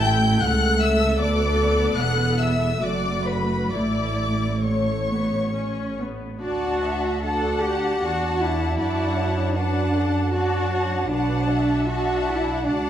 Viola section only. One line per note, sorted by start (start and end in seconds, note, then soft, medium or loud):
0.00 0.41 A3 medium
0.00 0.42 E4 medium
0.42 1.18 A3 medium
0.42 2.82 A4 medium
1.20 2.82 B3 medium
2.81 3.70 A3 soft
2.81 3.70 F#4 soft
3.72 4.52 A3 soft
3.72 4.54 E4 soft
4.62 5.05 A3 soft
5.08 5.53 B3 soft
5.54 5.98 C#4 medium
5.98 6.42 B3 soft
6.42 7.19 D4 soft
6.42 7.19 F#4 soft
7.24 8.00 D4 soft
7.24 8.00 F#4 soft
8.01 8.78 D4 soft
8.01 8.78 F#4 soft
8.80 9.55 D4 soft
8.80 9.55 F#4 soft
9.57 10.33 D4 soft
9.57 10.33 F#4 soft
10.34 11.10 D4 soft
10.34 11.10 F#4 soft
11.11 11.87 D4 soft
11.11 11.87 F#4 soft
11.88 12.63 D4 soft
11.88 12.63 F#4 soft
12.64 12.90 D4 soft
12.64 12.90 F#4 soft